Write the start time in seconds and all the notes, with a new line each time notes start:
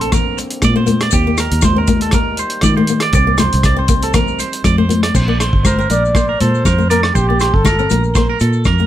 Already playing: A#1 D3 A#3 C4
0.01 A4, closed hi-hat
0.12 A#3 A#4, kick, cross-stick, closed hi-hat, low conga, maracas
0.38 muted clean electric guitar stroke, closed hi-hat, muted conga, maracas
0.50 closed hi-hat
0.62 A#2 D5, kick, cross-stick, closed hi-hat, high conga, maracas
0.76 A3 C5
0.86 A#3, closed hi-hat, high conga, maracas
1.00 D5, cross-stick, closed hi-hat, maracas
1.11 D#2 D#3 G3 C4 G4, kick, closed hi-hat, muted conga, maracas
1.27 A#3
1.37 A#4, cross-stick, closed hi-hat, muted conga, maracas
1.51 D#2, closed hi-hat
1.62 C5, kick, cross-stick, closed hi-hat, muted conga, high conga, maracas
1.76 C4 A#4
1.87 A#3, kick, closed hi-hat, high conga, maracas
2.01 A4, closed hi-hat
2.11 A#3 A#4, kick, cross-stick, closed hi-hat, maracas
2.37 C5, closed hi-hat, muted conga, maracas
2.50 closed hi-hat
2.61 D#3 D5, kick, cross-stick, closed hi-hat, high conga, maracas
2.77 A3 C5
2.87 A#3, closed hi-hat, maracas
3.00 D5, cross-stick, closed hi-hat, maracas
3.12 C2 D#3 G3 C4 D5, kick, closed hi-hat, muted conga, maracas
3.27 A#3
3.38 C5, cross-stick, closed hi-hat, muted conga, high conga, low conga, maracas
3.52 C2, closed hi-hat, maracas
3.63 D5, kick, cross-stick, closed hi-hat, muted conga, maracas
3.77 C4 C5
3.88 A#3, kick, closed hi-hat, maracas
4.02 A4, closed hi-hat, maracas
4.14 A#3 A#4, kick, cross-stick, closed hi-hat, low conga, maracas
4.28 maracas
4.39 C5, closed hi-hat, muted conga, maracas
4.53 closed hi-hat, maracas
4.64 F2 D5, kick, cross-stick, closed hi-hat, high conga, maracas
4.78 A3 C5
4.89 A#3, closed hi-hat, high conga, maracas
5.03 D5, cross-stick, closed hi-hat, maracas
5.15 A#1 C4 C5, kick, crash, muted conga, maracas
5.28 A#3 D5
5.40 C5, cross-stick, closed hi-hat, muted conga, maracas
5.53 G1, kick
5.65 A#4 C5, kick, cross-stick, muted conga, high conga, maracas
5.79 C4 A#4, maracas
5.90 A#1 A#3 D5, closed hi-hat, maracas
6.05 maracas
6.15 A#3 C5, kick, cross-stick, muted conga, maracas
6.29 A#4
6.40 A#2 A4 C5, closed hi-hat, high conga, maracas
6.55 maracas
6.65 F2 A#4, kick, cross-stick, high conga, maracas
6.78 A3, maracas
6.90 A#3 A#4 D5, closed hi-hat, maracas
7.03 cross-stick, maracas
7.15 A#1 C4 G4 C5, kick, muted conga, maracas
7.29 A#3 D5
7.40 C5, cross-stick, closed hi-hat, muted conga, maracas
7.54 G1 A4, kick
7.65 A#4, kick, cross-stick, muted conga, high conga, maracas
7.79 C4 A#4, maracas
7.90 A#1 A#3 A#4, closed hi-hat, high conga, maracas
8.04 maracas
8.15 A#3 C5, kick, cross-stick, muted conga, maracas
8.29 A#4
8.40 A#2 A4, closed hi-hat, maracas
8.53 maracas
8.65 F2 A#4, kick, cross-stick, high conga, low conga, maracas
8.78 A3, maracas